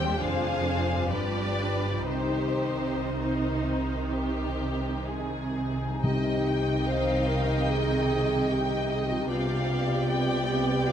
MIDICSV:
0, 0, Header, 1, 9, 480
1, 0, Start_track
1, 0, Key_signature, -3, "minor"
1, 0, Tempo, 890208
1, 600, Tempo, 996678
1, 1068, Time_signature, 4, 2, 24, 8
1, 2520, Tempo, 938967
1, 3000, Tempo, 827586
1, 3960, Tempo, 794702
1, 5910, End_track
2, 0, Start_track
2, 0, Title_t, "Violin section"
2, 0, Program_c, 0, 48
2, 0, Note_on_c, 0, 79, 59
2, 113, Note_on_c, 0, 77, 53
2, 115, Note_off_c, 0, 79, 0
2, 597, Note_on_c, 0, 74, 55
2, 598, Note_off_c, 0, 77, 0
2, 1067, Note_off_c, 0, 74, 0
2, 1067, Note_on_c, 0, 72, 50
2, 2501, Note_off_c, 0, 72, 0
2, 2997, Note_on_c, 0, 75, 43
2, 3223, Note_off_c, 0, 75, 0
2, 3240, Note_on_c, 0, 79, 43
2, 3481, Note_off_c, 0, 79, 0
2, 3481, Note_on_c, 0, 77, 50
2, 3957, Note_on_c, 0, 75, 47
2, 3960, Note_off_c, 0, 77, 0
2, 4444, Note_off_c, 0, 75, 0
2, 4445, Note_on_c, 0, 79, 51
2, 4686, Note_on_c, 0, 75, 46
2, 4687, Note_off_c, 0, 79, 0
2, 4929, Note_off_c, 0, 75, 0
2, 4931, Note_on_c, 0, 77, 55
2, 5401, Note_off_c, 0, 77, 0
2, 5407, Note_on_c, 0, 79, 54
2, 5870, Note_off_c, 0, 79, 0
2, 5877, Note_on_c, 0, 77, 48
2, 5910, Note_off_c, 0, 77, 0
2, 5910, End_track
3, 0, Start_track
3, 0, Title_t, "Violin section"
3, 0, Program_c, 1, 48
3, 0, Note_on_c, 1, 67, 38
3, 0, Note_on_c, 1, 72, 41
3, 104, Note_off_c, 1, 72, 0
3, 105, Note_off_c, 1, 67, 0
3, 115, Note_on_c, 1, 68, 42
3, 116, Note_on_c, 1, 72, 42
3, 590, Note_off_c, 1, 72, 0
3, 594, Note_on_c, 1, 71, 41
3, 595, Note_on_c, 1, 67, 39
3, 600, Note_off_c, 1, 68, 0
3, 1057, Note_off_c, 1, 67, 0
3, 1065, Note_off_c, 1, 71, 0
3, 1068, Note_on_c, 1, 67, 33
3, 1069, Note_on_c, 1, 72, 38
3, 1500, Note_off_c, 1, 67, 0
3, 1509, Note_off_c, 1, 72, 0
3, 1557, Note_on_c, 1, 63, 36
3, 2022, Note_off_c, 1, 63, 0
3, 2036, Note_on_c, 1, 67, 43
3, 2516, Note_on_c, 1, 68, 37
3, 2519, Note_off_c, 1, 67, 0
3, 2997, Note_on_c, 1, 75, 47
3, 2998, Note_off_c, 1, 68, 0
3, 2998, Note_on_c, 1, 79, 45
3, 4904, Note_off_c, 1, 75, 0
3, 4904, Note_off_c, 1, 79, 0
3, 4928, Note_on_c, 1, 74, 49
3, 4929, Note_on_c, 1, 79, 45
3, 5910, Note_off_c, 1, 74, 0
3, 5910, Note_off_c, 1, 79, 0
3, 5910, End_track
4, 0, Start_track
4, 0, Title_t, "Clarinet"
4, 0, Program_c, 2, 71
4, 2996, Note_on_c, 2, 67, 58
4, 3484, Note_on_c, 2, 72, 59
4, 3492, Note_off_c, 2, 67, 0
4, 3717, Note_on_c, 2, 70, 50
4, 3726, Note_off_c, 2, 72, 0
4, 3959, Note_on_c, 2, 68, 61
4, 3968, Note_off_c, 2, 70, 0
4, 4443, Note_on_c, 2, 67, 57
4, 4453, Note_off_c, 2, 68, 0
4, 4723, Note_on_c, 2, 68, 51
4, 4732, Note_off_c, 2, 67, 0
4, 4777, Note_on_c, 2, 67, 48
4, 4786, Note_off_c, 2, 68, 0
4, 4820, Note_on_c, 2, 65, 46
4, 4829, Note_off_c, 2, 67, 0
4, 4873, Note_on_c, 2, 67, 47
4, 4882, Note_off_c, 2, 65, 0
4, 4923, Note_off_c, 2, 67, 0
4, 4927, Note_on_c, 2, 65, 58
4, 5639, Note_on_c, 2, 67, 53
4, 5648, Note_off_c, 2, 65, 0
4, 5883, Note_on_c, 2, 65, 63
4, 5893, Note_off_c, 2, 67, 0
4, 5910, Note_off_c, 2, 65, 0
4, 5910, End_track
5, 0, Start_track
5, 0, Title_t, "Viola section"
5, 0, Program_c, 3, 48
5, 0, Note_on_c, 3, 55, 44
5, 0, Note_on_c, 3, 60, 45
5, 103, Note_off_c, 3, 60, 0
5, 105, Note_off_c, 3, 55, 0
5, 115, Note_on_c, 3, 53, 39
5, 115, Note_on_c, 3, 62, 42
5, 590, Note_off_c, 3, 53, 0
5, 590, Note_off_c, 3, 62, 0
5, 600, Note_on_c, 3, 53, 36
5, 600, Note_on_c, 3, 62, 40
5, 1059, Note_off_c, 3, 53, 0
5, 1059, Note_off_c, 3, 62, 0
5, 1065, Note_on_c, 3, 51, 37
5, 1066, Note_on_c, 3, 63, 38
5, 2878, Note_off_c, 3, 63, 0
5, 2898, Note_off_c, 3, 51, 0
5, 2999, Note_on_c, 3, 63, 46
5, 3000, Note_on_c, 3, 51, 44
5, 4905, Note_off_c, 3, 51, 0
5, 4905, Note_off_c, 3, 63, 0
5, 4930, Note_on_c, 3, 67, 49
5, 4932, Note_on_c, 3, 59, 44
5, 5910, Note_off_c, 3, 59, 0
5, 5910, Note_off_c, 3, 67, 0
5, 5910, End_track
6, 0, Start_track
6, 0, Title_t, "Harp"
6, 0, Program_c, 4, 46
6, 0, Note_on_c, 4, 51, 36
6, 0, Note_on_c, 4, 55, 30
6, 0, Note_on_c, 4, 63, 31
6, 0, Note_on_c, 4, 72, 31
6, 19, Note_on_c, 4, 41, 38
6, 43, Note_on_c, 4, 56, 29
6, 67, Note_on_c, 4, 62, 28
6, 84, Note_off_c, 4, 72, 0
6, 86, Note_off_c, 4, 51, 0
6, 91, Note_on_c, 4, 72, 31
6, 97, Note_off_c, 4, 55, 0
6, 109, Note_off_c, 4, 63, 0
6, 499, Note_on_c, 4, 43, 37
6, 523, Note_on_c, 4, 55, 27
6, 549, Note_on_c, 4, 65, 29
6, 572, Note_off_c, 4, 41, 0
6, 573, Note_on_c, 4, 71, 31
6, 584, Note_off_c, 4, 56, 0
6, 607, Note_off_c, 4, 72, 0
6, 981, Note_on_c, 4, 48, 29
6, 997, Note_off_c, 4, 55, 0
6, 1002, Note_on_c, 4, 55, 26
6, 1024, Note_on_c, 4, 63, 25
6, 1043, Note_off_c, 4, 43, 0
6, 1045, Note_on_c, 4, 72, 21
6, 1065, Note_off_c, 4, 65, 0
6, 1066, Note_off_c, 4, 62, 0
6, 1076, Note_off_c, 4, 71, 0
6, 2880, Note_off_c, 4, 48, 0
6, 2903, Note_off_c, 4, 55, 0
6, 2903, Note_on_c, 4, 48, 37
6, 2925, Note_off_c, 4, 63, 0
6, 2927, Note_on_c, 4, 55, 26
6, 2948, Note_off_c, 4, 72, 0
6, 2949, Note_on_c, 4, 63, 29
6, 2973, Note_on_c, 4, 72, 29
6, 4813, Note_off_c, 4, 48, 0
6, 4821, Note_on_c, 4, 48, 39
6, 4841, Note_off_c, 4, 55, 0
6, 4848, Note_on_c, 4, 55, 28
6, 4875, Note_on_c, 4, 62, 30
6, 4904, Note_on_c, 4, 71, 29
6, 4919, Note_off_c, 4, 63, 0
6, 4933, Note_off_c, 4, 72, 0
6, 5910, Note_off_c, 4, 48, 0
6, 5910, Note_off_c, 4, 55, 0
6, 5910, Note_off_c, 4, 62, 0
6, 5910, Note_off_c, 4, 71, 0
6, 5910, End_track
7, 0, Start_track
7, 0, Title_t, "Timpani"
7, 0, Program_c, 5, 47
7, 2997, Note_on_c, 5, 48, 55
7, 3697, Note_off_c, 5, 48, 0
7, 5910, End_track
8, 0, Start_track
8, 0, Title_t, "Cello section"
8, 0, Program_c, 6, 48
8, 0, Note_on_c, 6, 39, 45
8, 99, Note_off_c, 6, 39, 0
8, 118, Note_on_c, 6, 41, 45
8, 601, Note_off_c, 6, 41, 0
8, 604, Note_on_c, 6, 43, 43
8, 1071, Note_off_c, 6, 43, 0
8, 1071, Note_on_c, 6, 48, 37
8, 2880, Note_off_c, 6, 48, 0
8, 3003, Note_on_c, 6, 48, 44
8, 4907, Note_off_c, 6, 48, 0
8, 4930, Note_on_c, 6, 48, 46
8, 5910, Note_off_c, 6, 48, 0
8, 5910, End_track
9, 0, Start_track
9, 0, Title_t, "Double bass section"
9, 0, Program_c, 7, 48
9, 0, Note_on_c, 7, 39, 46
9, 99, Note_off_c, 7, 39, 0
9, 118, Note_on_c, 7, 29, 37
9, 601, Note_off_c, 7, 29, 0
9, 602, Note_on_c, 7, 31, 34
9, 1069, Note_off_c, 7, 31, 0
9, 1069, Note_on_c, 7, 36, 34
9, 2879, Note_off_c, 7, 36, 0
9, 3002, Note_on_c, 7, 36, 43
9, 4907, Note_off_c, 7, 36, 0
9, 4934, Note_on_c, 7, 36, 44
9, 5910, Note_off_c, 7, 36, 0
9, 5910, End_track
0, 0, End_of_file